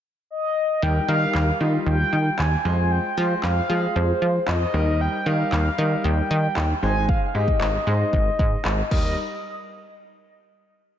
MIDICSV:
0, 0, Header, 1, 5, 480
1, 0, Start_track
1, 0, Key_signature, -3, "major"
1, 0, Tempo, 521739
1, 760, Time_signature, 4, 2, 24, 8
1, 10110, End_track
2, 0, Start_track
2, 0, Title_t, "Soft synth lead"
2, 0, Program_c, 0, 80
2, 280, Note_on_c, 0, 75, 93
2, 763, Note_on_c, 0, 79, 113
2, 777, Note_off_c, 0, 75, 0
2, 996, Note_off_c, 0, 79, 0
2, 1001, Note_on_c, 0, 77, 97
2, 1447, Note_off_c, 0, 77, 0
2, 1719, Note_on_c, 0, 79, 114
2, 2201, Note_on_c, 0, 80, 109
2, 2215, Note_off_c, 0, 79, 0
2, 2680, Note_on_c, 0, 79, 113
2, 2694, Note_off_c, 0, 80, 0
2, 3160, Note_off_c, 0, 79, 0
2, 3166, Note_on_c, 0, 77, 113
2, 3645, Note_on_c, 0, 72, 101
2, 3659, Note_off_c, 0, 77, 0
2, 4119, Note_off_c, 0, 72, 0
2, 4125, Note_on_c, 0, 75, 97
2, 4608, Note_on_c, 0, 79, 112
2, 4622, Note_off_c, 0, 75, 0
2, 4846, Note_on_c, 0, 77, 107
2, 4859, Note_off_c, 0, 79, 0
2, 5565, Note_on_c, 0, 79, 111
2, 5579, Note_off_c, 0, 77, 0
2, 6280, Note_off_c, 0, 79, 0
2, 6285, Note_on_c, 0, 80, 104
2, 6524, Note_on_c, 0, 77, 97
2, 6538, Note_off_c, 0, 80, 0
2, 6692, Note_off_c, 0, 77, 0
2, 6697, Note_on_c, 0, 77, 60
2, 6765, Note_on_c, 0, 75, 97
2, 6779, Note_off_c, 0, 77, 0
2, 8192, Note_off_c, 0, 75, 0
2, 8198, Note_on_c, 0, 75, 92
2, 8422, Note_off_c, 0, 75, 0
2, 10110, End_track
3, 0, Start_track
3, 0, Title_t, "Grand piano"
3, 0, Program_c, 1, 0
3, 758, Note_on_c, 1, 55, 67
3, 759, Note_on_c, 1, 63, 60
3, 762, Note_on_c, 1, 70, 78
3, 922, Note_off_c, 1, 55, 0
3, 923, Note_off_c, 1, 63, 0
3, 924, Note_off_c, 1, 70, 0
3, 996, Note_on_c, 1, 55, 77
3, 999, Note_on_c, 1, 63, 67
3, 1002, Note_on_c, 1, 70, 85
3, 1325, Note_off_c, 1, 55, 0
3, 1326, Note_off_c, 1, 63, 0
3, 1328, Note_off_c, 1, 70, 0
3, 1476, Note_on_c, 1, 55, 67
3, 1479, Note_on_c, 1, 63, 64
3, 1482, Note_on_c, 1, 65, 73
3, 2131, Note_off_c, 1, 55, 0
3, 2133, Note_off_c, 1, 63, 0
3, 2135, Note_off_c, 1, 65, 0
3, 2438, Note_on_c, 1, 56, 78
3, 2440, Note_on_c, 1, 65, 65
3, 2442, Note_on_c, 1, 72, 84
3, 2823, Note_off_c, 1, 56, 0
3, 2824, Note_off_c, 1, 65, 0
3, 2825, Note_off_c, 1, 72, 0
3, 2920, Note_on_c, 1, 56, 76
3, 2923, Note_on_c, 1, 65, 69
3, 2924, Note_on_c, 1, 72, 83
3, 3247, Note_off_c, 1, 56, 0
3, 3248, Note_off_c, 1, 65, 0
3, 3249, Note_off_c, 1, 72, 0
3, 3398, Note_on_c, 1, 56, 73
3, 3401, Note_on_c, 1, 65, 67
3, 3403, Note_on_c, 1, 68, 78
3, 4053, Note_off_c, 1, 56, 0
3, 4054, Note_off_c, 1, 65, 0
3, 4055, Note_off_c, 1, 68, 0
3, 4360, Note_on_c, 1, 55, 73
3, 4362, Note_on_c, 1, 63, 67
3, 4365, Note_on_c, 1, 70, 83
3, 4744, Note_off_c, 1, 55, 0
3, 4745, Note_off_c, 1, 63, 0
3, 4746, Note_off_c, 1, 70, 0
3, 4839, Note_on_c, 1, 55, 77
3, 4841, Note_on_c, 1, 63, 72
3, 4842, Note_on_c, 1, 70, 88
3, 5166, Note_off_c, 1, 55, 0
3, 5167, Note_off_c, 1, 63, 0
3, 5168, Note_off_c, 1, 70, 0
3, 5318, Note_on_c, 1, 55, 74
3, 5320, Note_on_c, 1, 63, 66
3, 5322, Note_on_c, 1, 70, 77
3, 5973, Note_off_c, 1, 55, 0
3, 5974, Note_off_c, 1, 63, 0
3, 5975, Note_off_c, 1, 70, 0
3, 6278, Note_on_c, 1, 56, 75
3, 6280, Note_on_c, 1, 63, 68
3, 6283, Note_on_c, 1, 72, 80
3, 6663, Note_off_c, 1, 56, 0
3, 6664, Note_off_c, 1, 63, 0
3, 6665, Note_off_c, 1, 72, 0
3, 6755, Note_on_c, 1, 56, 76
3, 6757, Note_on_c, 1, 63, 73
3, 6759, Note_on_c, 1, 67, 82
3, 7084, Note_off_c, 1, 56, 0
3, 7085, Note_off_c, 1, 63, 0
3, 7086, Note_off_c, 1, 67, 0
3, 7238, Note_on_c, 1, 56, 69
3, 7240, Note_on_c, 1, 63, 64
3, 7243, Note_on_c, 1, 72, 75
3, 7893, Note_off_c, 1, 56, 0
3, 7894, Note_off_c, 1, 63, 0
3, 7895, Note_off_c, 1, 72, 0
3, 8197, Note_on_c, 1, 55, 81
3, 8197, Note_on_c, 1, 70, 88
3, 8198, Note_on_c, 1, 63, 73
3, 8421, Note_off_c, 1, 55, 0
3, 8422, Note_off_c, 1, 63, 0
3, 8422, Note_off_c, 1, 70, 0
3, 10110, End_track
4, 0, Start_track
4, 0, Title_t, "Analog synth bass"
4, 0, Program_c, 2, 38
4, 759, Note_on_c, 2, 39, 107
4, 915, Note_off_c, 2, 39, 0
4, 997, Note_on_c, 2, 51, 96
4, 1154, Note_off_c, 2, 51, 0
4, 1237, Note_on_c, 2, 39, 100
4, 1394, Note_off_c, 2, 39, 0
4, 1477, Note_on_c, 2, 51, 90
4, 1634, Note_off_c, 2, 51, 0
4, 1716, Note_on_c, 2, 39, 103
4, 1873, Note_off_c, 2, 39, 0
4, 1957, Note_on_c, 2, 51, 98
4, 2114, Note_off_c, 2, 51, 0
4, 2200, Note_on_c, 2, 39, 95
4, 2356, Note_off_c, 2, 39, 0
4, 2439, Note_on_c, 2, 41, 99
4, 2751, Note_off_c, 2, 41, 0
4, 2921, Note_on_c, 2, 53, 104
4, 3076, Note_off_c, 2, 53, 0
4, 3161, Note_on_c, 2, 41, 100
4, 3316, Note_off_c, 2, 41, 0
4, 3401, Note_on_c, 2, 53, 92
4, 3556, Note_off_c, 2, 53, 0
4, 3641, Note_on_c, 2, 41, 99
4, 3796, Note_off_c, 2, 41, 0
4, 3881, Note_on_c, 2, 53, 92
4, 4037, Note_off_c, 2, 53, 0
4, 4121, Note_on_c, 2, 41, 84
4, 4277, Note_off_c, 2, 41, 0
4, 4360, Note_on_c, 2, 39, 99
4, 4672, Note_off_c, 2, 39, 0
4, 4840, Note_on_c, 2, 51, 97
4, 4996, Note_off_c, 2, 51, 0
4, 5081, Note_on_c, 2, 39, 106
4, 5237, Note_off_c, 2, 39, 0
4, 5320, Note_on_c, 2, 51, 96
4, 5476, Note_off_c, 2, 51, 0
4, 5560, Note_on_c, 2, 39, 102
4, 5716, Note_off_c, 2, 39, 0
4, 5802, Note_on_c, 2, 51, 96
4, 5957, Note_off_c, 2, 51, 0
4, 6043, Note_on_c, 2, 39, 93
4, 6198, Note_off_c, 2, 39, 0
4, 6281, Note_on_c, 2, 32, 96
4, 6593, Note_off_c, 2, 32, 0
4, 6760, Note_on_c, 2, 44, 97
4, 6916, Note_off_c, 2, 44, 0
4, 6999, Note_on_c, 2, 32, 105
4, 7155, Note_off_c, 2, 32, 0
4, 7240, Note_on_c, 2, 44, 101
4, 7396, Note_off_c, 2, 44, 0
4, 7480, Note_on_c, 2, 32, 110
4, 7636, Note_off_c, 2, 32, 0
4, 7721, Note_on_c, 2, 44, 95
4, 7877, Note_off_c, 2, 44, 0
4, 7959, Note_on_c, 2, 32, 96
4, 8115, Note_off_c, 2, 32, 0
4, 8200, Note_on_c, 2, 39, 94
4, 8423, Note_off_c, 2, 39, 0
4, 10110, End_track
5, 0, Start_track
5, 0, Title_t, "Drums"
5, 1240, Note_on_c, 9, 39, 121
5, 1332, Note_off_c, 9, 39, 0
5, 2198, Note_on_c, 9, 39, 107
5, 2290, Note_off_c, 9, 39, 0
5, 3159, Note_on_c, 9, 39, 116
5, 3251, Note_off_c, 9, 39, 0
5, 4120, Note_on_c, 9, 39, 109
5, 4212, Note_off_c, 9, 39, 0
5, 5081, Note_on_c, 9, 39, 119
5, 5173, Note_off_c, 9, 39, 0
5, 6040, Note_on_c, 9, 39, 103
5, 6132, Note_off_c, 9, 39, 0
5, 6520, Note_on_c, 9, 36, 106
5, 6612, Note_off_c, 9, 36, 0
5, 6880, Note_on_c, 9, 36, 82
5, 6972, Note_off_c, 9, 36, 0
5, 7000, Note_on_c, 9, 39, 119
5, 7092, Note_off_c, 9, 39, 0
5, 7480, Note_on_c, 9, 36, 84
5, 7572, Note_off_c, 9, 36, 0
5, 7721, Note_on_c, 9, 36, 90
5, 7813, Note_off_c, 9, 36, 0
5, 7958, Note_on_c, 9, 39, 111
5, 8050, Note_off_c, 9, 39, 0
5, 8200, Note_on_c, 9, 36, 100
5, 8201, Note_on_c, 9, 49, 84
5, 8292, Note_off_c, 9, 36, 0
5, 8293, Note_off_c, 9, 49, 0
5, 10110, End_track
0, 0, End_of_file